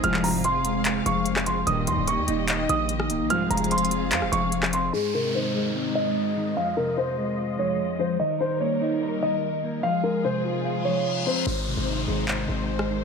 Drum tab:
HH |x-----o-----x-----x-----x-----x-----x-----x-----|x-----x-----x-----x-----x-----x-----x-----x-----|x-----x-x-x-x-x-x-x-----x-----x-----x-----x-----|------------------------------------------------|
CP |---x--------------------x--------------x--------|------------------------x-----------------------|------------------------x--------------x--------|------------------------------------------------|
SD |---------------------------------------r--------|---------------------------------------r--------|---------------------------r-----------r--------|------------------------------------------------|

HH |------------------------------------------------|------------------------------------------------|------------------------------------------------|------------------------------------------------|
CP |------------------------------------------------|------------------------------------------------|------------------------------------------------|------------------------x-----------------------|
SD |------------------------------------------------|------------------------------------------------|------------------------------------------------|---------------------------------------r--------|